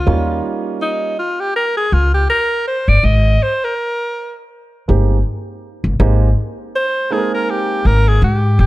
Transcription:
Already playing: F4
0.06 D#2 F#3 A#3 C#4 D#4 F4
0.13 G3
0.82 D#4
1.19 F4
1.40 G4
1.56 A#4
1.77 G#4
1.92 C#2 F4
2.14 G4
2.30 A#4
2.67 C5
2.88 G1 D5
3.03 G#1 D#5
3.43 C5
3.64 A#4
4.88 G1 G#3 A#3 C4 D#4 G4
5.84 G1
6.00 G#1 G#3 A#3 C4 D#4 G4
6.76 C5
7.10 G#3 A#3 C4 D#4 G#4 A4
7.18 A#4
7.34 A#4
7.50 G4
7.85 G#1 A#4
8.08 G#4
8.22 G#2 G4
8.59 G#1 G4

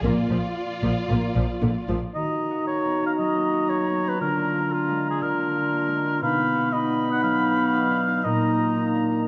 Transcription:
0.03 A#1 A#2 A#3 F4 D5
0.30 A#1 A#2 F3
0.83 A#1 A#2 F3
1.09 A#1 A#2 A#3
1.35 A#1 A#2 F3
1.62 A#1 A#2 D3
1.89 A#1 A#2 F3
2.14 D#3 D#4 F#4 D#5 A#5
2.33 A#3
2.51 F#4
2.67 C#4 C#5
2.85 B3
3.02 C#4
3.06 F5
3.18 F#3 D#5
3.36 A#3
3.53 F#4
3.69 C#4 C#5
3.87 B3
4.04 C#4
4.09 B4
4.20 D3 D4 F4 A#4
4.37 A#3
4.54 F4
4.72 A#3 F4
4.88 G#3
5.05 F4
5.10 G#4
5.21 D3 A#4
5.38 A#3
5.55 F4
5.72 A#3
5.88 G#3
6.06 F4
6.21 B2 B3 D#4 F5 B5
6.39 B3
6.55 F#4
6.72 D#4 D#5 B5
6.88 D4
7.05 D#4
7.12 F#5
7.22 F#3 F5
7.39 B3
7.57 F#4
7.73 D#4
7.90 D4
8.08 D#4
8.24 A#2 A#3 D#4 D#5 A#5
8.41 A#3
8.58 F4
8.76 D#4
8.95 D4
9.12 D#4

